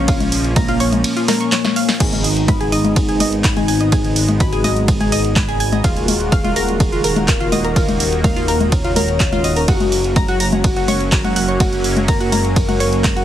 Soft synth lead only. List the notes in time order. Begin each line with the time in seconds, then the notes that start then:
Already playing: C#4
0.56 A#3
1.04 A#3
2.00 D#4
2.72 D#4
3.44 D#4
4.40 F#4
4.88 G#4
5.84 G#4
6.56 G#4
7.28 A#4
8.24 A#4
8.72 C#5
9.68 F#4
10.40 F#4
11.12 F#4
12.08 A#4
12.56 A#4